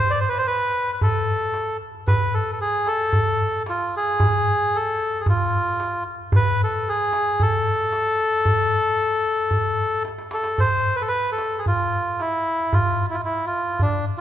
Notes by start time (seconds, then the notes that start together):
Already playing: C5
0.08 D5, darbuka ka
0.20 C5, darbuka ka
0.29 B4
0.34 C5, darbuka ka
0.47 B4, darbuka ka
0.88 darbuka ka
0.93 B4
1.01 A4, darbuka dum
1.41 darbuka ka
1.54 darbuka tek
1.95 darbuka ka
2.07 B4, darbuka dum
2.33 A4, darbuka ka
2.52 A4
2.60 G#4, darbuka ka
2.86 A4, darbuka tek
3.00 darbuka ka
3.13 darbuka dum
3.54 darbuka ka
3.66 F4, darbuka tek
3.97 G#4
4.20 darbuka dum
4.47 darbuka ka
4.74 A4, darbuka ka
5.14 darbuka ka
5.21 G#4
5.26 F4, darbuka dum
5.67 darbuka ka
5.80 darbuka tek
6.32 B4, darbuka dum
6.60 A4, darbuka ka
6.87 G#4, darbuka ka
7.13 darbuka tek
7.27 darbuka ka
7.40 A4, darbuka dum
7.79 darbuka ka
7.92 darbuka tek
8.45 darbuka dum
8.59 darbuka ka
8.72 darbuka ka
8.98 darbuka ka
9.51 darbuka dum
9.92 darbuka ka
10.05 darbuka tek
10.18 darbuka ka
10.31 A4, darbuka tek
10.44 darbuka ka
10.58 C5, darbuka dum
10.96 B4
11.02 A4
11.08 B4, darbuka ka
11.32 A4
11.38 darbuka tek
11.52 darbuka ka
11.59 G#4
11.66 F4, darbuka dum
12.20 E4, darbuka tek
12.59 darbuka ka
12.73 F4, darbuka dum
13.10 E4 F4
13.25 E4, darbuka ka
13.46 F4
13.66 darbuka ka
13.79 D4, darbuka dum